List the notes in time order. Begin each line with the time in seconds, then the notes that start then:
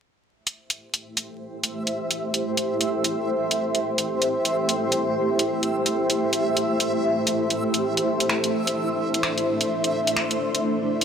0.32 A3 E4 G4 C5 E5
0.47 closed hi-hat
0.70 closed hi-hat
0.94 closed hi-hat
1.17 closed hi-hat
1.64 closed hi-hat
1.87 closed hi-hat
2.11 closed hi-hat
2.34 closed hi-hat
2.57 closed hi-hat
2.81 closed hi-hat
3.04 closed hi-hat
3.51 closed hi-hat
3.75 closed hi-hat
3.98 closed hi-hat
4.22 closed hi-hat
4.45 closed hi-hat
4.69 closed hi-hat
4.92 closed hi-hat
5.39 closed hi-hat
5.63 closed hi-hat
5.86 closed hi-hat
6.10 closed hi-hat
6.33 closed hi-hat
6.57 closed hi-hat
6.80 closed hi-hat
7.27 closed hi-hat
7.50 closed hi-hat
7.74 closed hi-hat
7.83 D4 C5
7.97 closed hi-hat
8.20 closed hi-hat
8.29 finger snap
8.44 closed hi-hat
8.67 closed hi-hat
9.14 closed hi-hat
9.23 finger snap
9.38 closed hi-hat
9.61 closed hi-hat
9.84 closed hi-hat
10.07 closed hi-hat
10.16 finger snap
10.31 closed hi-hat
10.55 closed hi-hat
11.01 closed hi-hat